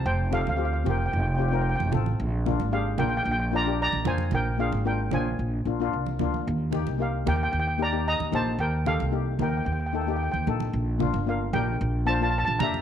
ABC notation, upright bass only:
X:1
M:4/4
L:1/16
Q:1/4=112
K:Bb
V:1 name="Upright bass" clef=bass
F,,,3 D,,3 F,,,2 F,,,4- F,,, F,,, A,,,2 | B,,,3 _A,,,3 B,,,2 B,,,4- B,,, B,,, F,,2 | B,,,3 _A,,,3 B,,,2 B,,,2 B,,,2 C,,2 D,,2 | E,,3 C,,3 E,,2 E,,4- E,, E,, B,,,2 |
E,,3 C,,3 E,,2 E,,4- E,, E,, B,,,2 | B,,,3 G,,,3 B,,,2 B,,,4- B,,, B,,, F,,2 |]